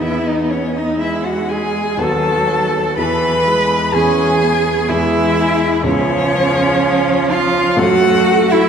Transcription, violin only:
X:1
M:3/4
L:1/16
Q:1/4=62
K:E
V:1 name="Violin"
e d c d e f g2 a4 | b4 g4 e4 | c6 ^e2 f3 =e |]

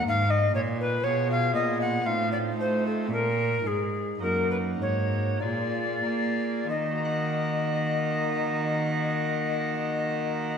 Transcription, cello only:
X:1
M:3/4
L:1/8
Q:1/4=50
K:Ebm
V:1 name="Cello" clef=bass
A,, B,, C, B,, =A,, =A, | B,, A,, G,, A,, B,, B, | E,6 |]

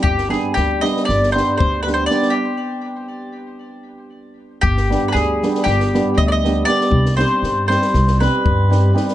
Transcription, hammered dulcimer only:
X:1
M:9/8
L:1/8
Q:3/8=79
K:none
V:1 name="Hammered dulcimer"
z [G,B,DG] z [G,B,DG] z [G,B,DG] z [G,B,DG] [G,B,DG] | z8 z | z [G,B,DG] z [G,B,DG] z [G,B,DG] z [G,B,DG] [G,B,DG] | z [G,C_EG] z [G,CEG] z [G,CEG] z [G,CEG] [G,CEG] |]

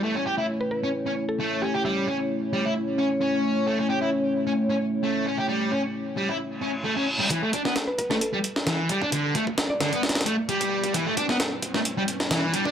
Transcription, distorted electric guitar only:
X:1
M:4/4
L:1/16
Q:"Swing 16ths" 1/4=132
K:Edor
V:1 name="Distorted electric guitar"
A, C G E z3 C z C z2 A,2 C G | G,2 C z3 G, E z2 C z C4 | A, C G E z3 C z C z2 A,2 C G | G,2 C z3 G, E z2 C z A, C z G, |
E, A, D B, z3 A, z G, z2 E,2 G, D | D,2 A, z3 D, B, z2 A, z G,4 | E, A, D B, z3 A, z G, z2 E,2 G, D |]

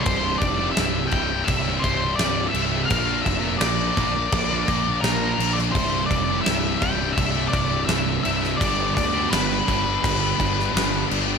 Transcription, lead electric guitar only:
X:1
M:4/4
L:1/16
Q:1/4=84
K:C
V:1 name="Lead electric guitar"
c2 d2 e2 g2 e2 c2 d2 e2 | f2 e2 d8 _B3 d | c2 d2 e2 g2 e2 d2 e2 e2 | d2 d2 B8- B2 z2 |]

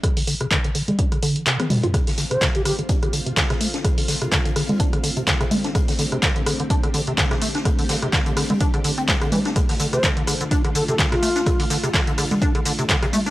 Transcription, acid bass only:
X:1
M:4/4
L:1/16
Q:"Swing 16ths" 1/4=126
K:Dm
V:1 name="Acid bass" clef=bass
D, D, D, C, D, D, D, D, D D, D, F, C, C C, F | D, D, D, C, D, D, D, D, D D, D, C, D, C, A, D | D, D, D, C, D, D, D, D, D D, D, C, D, C, A, D | D, D, D, C, D, D, D, D, D D, D, C, D, C, A, D |
D, D, D, C, D, D, D, D, D D, D, C F, D, E, D | D, D, D, C, D, D, D, D, D D, D, C, D, C, A, D | D, D, D, C, D, D, D, D, D D, D, C, D, C, A, D |]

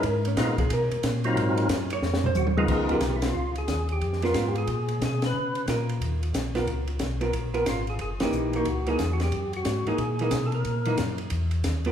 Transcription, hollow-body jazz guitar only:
X:1
M:4/4
L:1/8
Q:"Swing" 1/4=181
K:Dbmix
V:1 name="Hollow-body jazz guitar"
B D F A B4- | B2 z d2 =c2 z | z [CFB]3 z4 | z [CFB]3 z4 |
z2 [FB]3 z2 [CFB] | z3 [CFB] z [CFB] z2 | z [_F,B,E]2 [F,B,E] z [F,B,E] z2 | z3 [_F,B,E] z [F,B,E] z2 |
z [_F,B,E] z4 z [C=FB] |]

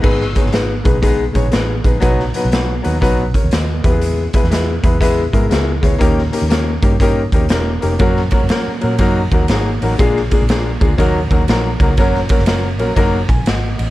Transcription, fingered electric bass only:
X:1
M:4/4
L:1/16
Q:"Swing" 1/4=121
K:D#phr
V:1 name="Fingered electric bass" clef=bass
G,,,2 z G,,,3 B,,,4 A,,,2 =A,,,2 ^A,,,2 | B,,,2 z B,,,3 D,,2 B,,,3 D,, D,,2 E,,2- | E,,2 z E,,3 E,,4 G,,2 C,,2 =D,,2 | D,,2 z D,,3 =G,,4 D,,2 E,,,2 ^E,,,2 |
F,,2 z F,, z2 A,,2 F,,2 D,,2 G,,,2 =A,,,2 | A,,,2 z A,,,3 =D,,2 ^D,,2 D,,2 A,,,2 C,,2 | F,,,2 z F,,,3 A,,,2 F,,,2 A,,,2 G,,,2 =A,,,2 |]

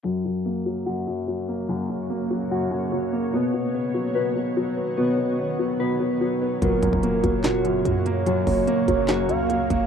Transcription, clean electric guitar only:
X:1
M:4/4
L:1/8
Q:1/4=146
K:F#
V:1 name="Clean electric guitar"
F,4 F4 | F,4 F4 | B,4 B4 | B,4 B4 |
F,4 F4 | F,4 F4 |]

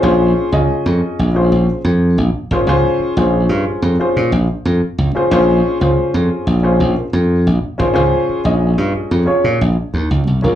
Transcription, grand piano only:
X:1
M:4/4
L:1/16
Q:1/4=91
K:Bbm
V:1 name="Grand piano"
[DFAc]3 [DFAe]4 z [DFAc]2 [Ac] z4 [DFAc] | [DFAc]3 [DFAc]4 z [DFAc]2 [Ac] z4 [DFAc] | [DFAc]3 [DFAc]4 z [DFAc]2 [AB] z4 [DFAc] | [DFAc]3 [DFAe]4 z [DFAd]2 [Ae] z4 [DFAB] |]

